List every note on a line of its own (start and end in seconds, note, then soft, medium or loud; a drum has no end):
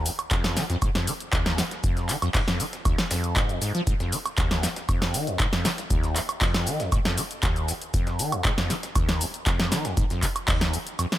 0.06 0.10 F2 loud
0.06 open hi-hat loud
0.06 shaker medium
0.19 closed hi-hat medium
0.19 high woodblock medium
0.19 shaker soft
0.31 0.58 F2 medium
0.31 kick loud
0.31 snare loud
0.31 clap loud
0.31 closed hi-hat medium
0.31 shaker medium
0.31 shaker soft
0.44 snare medium
0.44 closed hi-hat soft
0.44 shaker soft
0.57 0.64 D#3 loud
0.57 snare medium
0.57 open hi-hat loud
0.57 shaker medium
0.70 0.77 F2 loud
0.70 snare medium
0.70 closed hi-hat medium
0.70 shaker soft
0.82 0.89 G#2 medium
0.82 kick loud
0.82 closed hi-hat medium
0.82 high woodblock medium
0.82 shaker medium
0.82 shaker soft
0.95 1.09 F2 medium
0.95 snare medium
0.95 closed hi-hat soft
0.95 shaker soft
1.07 1.12 F3 medium
1.07 open hi-hat loud
1.07 shaker medium
1.20 closed hi-hat medium
1.20 shaker soft
1.33 1.60 D#2 loud
1.33 kick loud
1.33 snare loud
1.33 clap loud
1.33 closed hi-hat medium
1.33 shaker medium
1.33 shaker soft
1.46 snare medium
1.46 closed hi-hat soft
1.46 shaker soft
1.58 1.63 F2 loud
1.58 snare medium
1.58 open hi-hat loud
1.58 shaker medium
1.71 snare medium
1.71 closed hi-hat medium
1.71 shaker soft
1.84 2.11 F2 medium
1.84 kick loud
1.84 closed hi-hat medium
1.84 shaker medium
1.84 shaker soft
1.97 snare soft
1.97 closed hi-hat soft
1.97 shaker soft
2.09 2.16 D#3 loud
2.09 clap medium
2.09 open hi-hat loud
2.09 shaker medium
2.22 2.29 F2 loud
2.22 closed hi-hat medium
2.22 high woodblock medium
2.22 shaker soft
2.35 2.42 G#2 medium
2.35 kick loud
2.35 snare loud
2.35 clap loud
2.35 closed hi-hat medium
2.35 open hi-hat medium
2.35 shaker soft
2.48 2.61 F2 medium
2.48 snare medium
2.48 closed hi-hat soft
2.48 shaker soft
2.60 2.64 F3 medium
2.60 open hi-hat loud
2.60 shaker medium
2.73 snare medium
2.73 closed hi-hat medium
2.73 shaker soft
2.85 2.96 D#2 loud
2.85 kick loud
2.85 closed hi-hat medium
2.85 high woodblock medium
2.85 shaker medium
2.85 shaker soft
2.98 snare medium
2.98 closed hi-hat soft
2.98 shaker soft
3.11 3.38 F2 medium
3.11 snare loud
3.11 open hi-hat loud
3.11 shaker medium
3.24 closed hi-hat medium
3.24 shaker soft
3.36 3.51 G#2 loud
3.36 kick loud
3.36 snare loud
3.36 clap loud
3.36 closed hi-hat medium
3.36 shaker medium
3.36 shaker soft
3.49 3.59 F2 medium
3.49 closed hi-hat soft
3.49 shaker soft
3.62 3.72 G#2 medium
3.62 snare soft
3.62 open hi-hat loud
3.62 shaker medium
3.75 3.81 F3 loud
3.75 closed hi-hat soft
3.75 shaker soft
3.87 3.94 G#2 medium
3.87 kick loud
3.87 closed hi-hat medium
3.87 shaker medium
3.87 shaker soft
4.00 4.14 F2 medium
4.00 snare medium
4.00 closed hi-hat soft
4.00 shaker soft
4.12 4.17 F3 medium
4.12 open hi-hat loud
4.12 shaker medium
4.26 closed hi-hat medium
4.26 high woodblock medium
4.26 shaker soft
4.38 4.65 D#2 loud
4.38 kick loud
4.38 snare loud
4.38 clap loud
4.38 closed hi-hat medium
4.38 shaker medium
4.38 shaker soft
4.51 snare medium
4.51 closed hi-hat soft
4.51 shaker soft
4.63 4.68 F2 loud
4.63 snare medium
4.63 open hi-hat medium
4.63 shaker medium
4.76 snare medium
4.76 closed hi-hat medium
4.76 shaker soft
4.89 5.16 F2 medium
4.89 kick loud
4.89 closed hi-hat medium
4.89 high woodblock medium
4.89 shaker medium
4.89 shaker soft
5.02 snare medium
5.02 closed hi-hat soft
5.02 shaker soft
5.14 5.29 D#3 loud
5.14 open hi-hat loud
5.14 shaker medium
5.27 5.37 F2 medium
5.27 closed hi-hat medium
5.27 shaker soft
5.40 5.47 G#2 medium
5.40 kick loud
5.40 snare loud
5.40 clap loud
5.40 closed hi-hat medium
5.40 shaker medium
5.40 shaker soft
5.53 5.66 F2 medium
5.53 snare medium
5.53 closed hi-hat soft
5.53 shaker soft
5.65 5.69 F3 medium
5.65 snare medium
5.65 open hi-hat loud
5.65 shaker medium
5.78 snare medium
5.78 closed hi-hat medium
5.78 shaker soft
5.90 6.17 D#2 loud
5.90 kick loud
5.90 closed hi-hat medium
5.90 shaker medium
5.90 shaker soft
6.04 snare soft
6.04 closed hi-hat soft
6.04 shaker soft
6.16 6.20 F2 loud
6.16 clap medium
6.16 open hi-hat loud
6.16 shaker medium
6.29 closed hi-hat medium
6.29 high woodblock medium
6.29 shaker soft
6.41 6.68 F2 medium
6.41 kick loud
6.41 snare loud
6.41 clap loud
6.41 closed hi-hat medium
6.41 open hi-hat medium
6.41 shaker soft
6.54 snare medium
6.54 closed hi-hat soft
6.54 shaker soft
6.67 6.81 D#3 loud
6.67 open hi-hat medium
6.67 shaker medium
6.80 6.90 F2 medium
6.80 snare medium
6.80 closed hi-hat medium
6.80 shaker soft
6.92 6.99 G#2 medium
6.92 kick loud
6.92 closed hi-hat medium
6.92 high woodblock medium
6.92 shaker medium
6.92 shaker soft
7.05 7.19 F2 medium
7.05 snare medium
7.05 closed hi-hat soft
7.05 shaker soft
7.17 7.22 F3 medium
7.17 open hi-hat loud
7.17 shaker medium
7.31 closed hi-hat medium
7.31 shaker soft
7.43 7.70 D#2 loud
7.43 kick loud
7.43 snare loud
7.43 clap loud
7.43 closed hi-hat medium
7.43 shaker medium
7.43 shaker soft
7.56 closed hi-hat soft
7.56 shaker soft
7.68 7.73 F2 loud
7.68 snare soft
7.68 open hi-hat medium
7.68 shaker medium
7.82 closed hi-hat medium
7.82 shaker soft
7.94 8.21 F2 medium
7.94 kick loud
7.94 closed hi-hat medium
7.94 shaker medium
7.94 shaker soft
8.07 snare medium
8.07 closed hi-hat soft
8.07 shaker soft
8.19 8.34 D#3 loud
8.19 open hi-hat loud
8.19 shaker medium
8.32 8.43 F2 medium
8.32 closed hi-hat medium
8.32 high woodblock medium
8.32 shaker soft
8.45 8.52 G#2 medium
8.45 kick loud
8.45 snare loud
8.45 clap loud
8.45 closed hi-hat medium
8.45 shaker medium
8.45 shaker soft
8.58 8.71 F2 medium
8.58 snare medium
8.58 closed hi-hat soft
8.58 shaker soft
8.70 8.74 F3 medium
8.70 snare medium
8.70 open hi-hat medium
8.70 shaker medium
8.83 snare medium
8.83 closed hi-hat medium
8.83 shaker soft
8.95 9.22 D#2 loud
8.95 kick loud
8.95 closed hi-hat medium
8.95 high woodblock medium
8.95 shaker medium
8.95 shaker soft
9.09 snare medium
9.09 closed hi-hat soft
9.09 shaker soft
9.21 9.25 F2 loud
9.21 open hi-hat loud
9.21 shaker medium
9.34 closed hi-hat medium
9.34 shaker soft
9.46 9.73 F2 medium
9.46 kick loud
9.46 snare loud
9.46 clap loud
9.46 closed hi-hat medium
9.46 shaker medium
9.46 shaker soft
9.60 snare medium
9.60 closed hi-hat soft
9.60 shaker soft
9.72 9.86 D#3 loud
9.72 snare medium
9.72 open hi-hat medium
9.72 shaker medium
9.85 9.95 F2 medium
9.85 snare medium
9.85 closed hi-hat medium
9.85 shaker soft
9.97 10.04 G#2 medium
9.97 kick loud
9.97 closed hi-hat medium
9.97 shaker medium
9.97 shaker soft
10.10 10.24 F2 medium
10.10 snare soft
10.10 closed hi-hat soft
10.10 shaker soft
10.23 10.27 F3 medium
10.23 kick medium
10.23 clap medium
10.23 open hi-hat loud
10.23 shaker medium
10.36 closed hi-hat medium
10.36 high woodblock medium
10.36 shaker soft
10.48 10.75 D#2 loud
10.48 kick loud
10.48 snare loud
10.48 clap loud
10.48 closed hi-hat medium
10.48 open hi-hat medium
10.48 shaker soft
10.61 snare medium
10.61 closed hi-hat soft
10.61 shaker soft
10.73 10.78 F2 loud
10.73 open hi-hat medium
10.73 shaker medium
10.87 closed hi-hat medium
10.87 shaker soft
10.99 11.06 F2 medium
10.99 closed hi-hat medium
10.99 high woodblock medium
10.99 shaker medium
10.99 shaker soft
11.12 snare medium
11.12 closed hi-hat soft
11.12 shaker soft